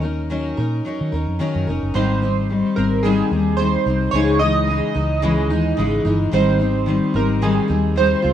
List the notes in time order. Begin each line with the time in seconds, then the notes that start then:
Already playing: D#2
0.02 C#4 D#4 A#4
0.30 D#3 F#3 C#4 D#4 A#4
0.57 A#2 C#4 D#4 A#4
0.85 F#3 C#4 D#4 A#4
1.01 D#3
1.12 D#2 C#4 D#4 A#4
1.28 F2
1.39 D#3 F#3 C#4 D#4 A#4
1.55 F#2
1.67 F1 C#4 D#4 A#4
1.83 F#1
1.94 G#1 G#2 D#3 G3 C4 D#4 C5
2.22 G3 C4 D#4
2.49 D#3 G3 C4 D#4
2.76 G#1 G3 C4 D#4 A#4
3.03 G#2 D#3 G3 C4 D#4 G#4
3.31 D#2 G3 C4 D#4
3.57 D#3 G3 C5
3.61 C4 D#4
3.86 C2 G3 C4 D#4
4.11 C#2 C#3 E3 G#3 C#5
4.16 D#4
4.39 G#3 D#4 D#5
4.44 E3
4.67 C#3 E3 G#3 D#4
4.94 C#2 E3 G#3 D#4
5.22 C#3 E3 G#3 D#4
5.50 D#2 E3 G#3 D#4
5.77 G#1 C#3 E3 G#3 D#4
6.05 G1 E3 G#3 D#4
6.32 G#1 G#2 D#3 G3 C4 D#4 C5
6.59 G3 C4 D#4
6.86 D#3 G3 C4 D#4
7.14 G#1 G3 C4 D#4 A#4
7.41 G#2 D#3 G3 C4 D#4 G#4
7.68 D#2 G3 C4 D#4
7.96 D#3 G3 C4 D#4 C5
8.22 C#2 G#3 C4 F4